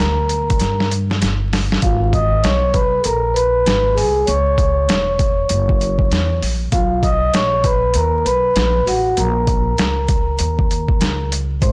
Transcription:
Already playing: A#4 A#5
0.00 D2, snare
0.29 closed hi-hat
0.50 kick, closed hi-hat
0.60 G2, snare, closed hi-hat
0.80 snare
0.91 closed hi-hat
1.11 snare
1.22 G1, snare, closed hi-hat
1.53 snare, open hi-hat
1.72 snare
1.82 G#1 F4 F5, kick, closed hi-hat
2.13 D#5 D#6, kick, closed hi-hat
2.43 B1 C#5 C#6, snare, closed hi-hat
2.73 B4 B5, kick, closed hi-hat
2.99 A4
3.04 A#1 A#4 A#5, closed hi-hat
3.34 B4 B5, closed hi-hat
3.66 G#1, snare, closed hi-hat
3.94 C2 G#4 G#5, open hi-hat
4.26 C#2 C#5 C#6, closed hi-hat
4.58 kick, closed hi-hat
4.89 E1, snare, closed hi-hat
5.19 kick, closed hi-hat
5.49 F#1, closed hi-hat
5.69 kick
5.81 closed hi-hat
5.99 kick
6.11 E2, snare, closed hi-hat
6.42 A#1, open hi-hat
6.72 B1 F4 F5, kick, closed hi-hat
7.03 D#5 D#6, kick, closed hi-hat
7.34 A#1 C#5 C#6, snare, closed hi-hat
7.64 B4 B5, kick, closed hi-hat
7.94 D#2 A#4 A#5, closed hi-hat
8.25 B1 B4 B5, closed hi-hat
8.56 A#1, snare, closed hi-hat
8.86 A1 F#4 F#5, open hi-hat
9.17 A#1 A#4 A#5, closed hi-hat
9.47 kick, closed hi-hat
9.78 C#2, snare, closed hi-hat
10.08 kick, closed hi-hat
10.39 D#2, closed hi-hat
10.59 kick
10.71 closed hi-hat
10.88 kick
11.01 C#2, snare, closed hi-hat
11.32 closed hi-hat
11.62 G#1 C5 C6, kick, closed hi-hat

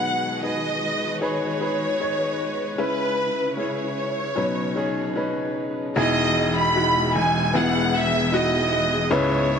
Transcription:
Already playing: B2 D#3 F#3 G#3 D#4 F#4 G#4 B4 F#5
0.43 D#4 G#4 B4 D#5
1.21 D#4 G#4 B4 C#5
1.61 D#4 G#4 B4
2.00 D#4 G#4 C#5
2.78 C#3 G#3 C#4 E4 B4
3.57 C#4 E4 G#4 C#5
4.36 B2 C#3 F#3 C#4 D#4 B4
4.76 C#4 D#4 G#4
5.16 C#4 D#4 B4
5.96 E1 B2 E3 G#3 B3 D#4 E4 G#4 D#5
6.57 B5
6.75 D#4 E4 F#4
7.15 E1 G#5
7.53 E1 B3 E4 G#4 F#5
7.97 E5
8.32 D#4 E4 F#4 D#5
9.10 C#2 G#2 C#3 G#3 C#4 E4 B4 C#5

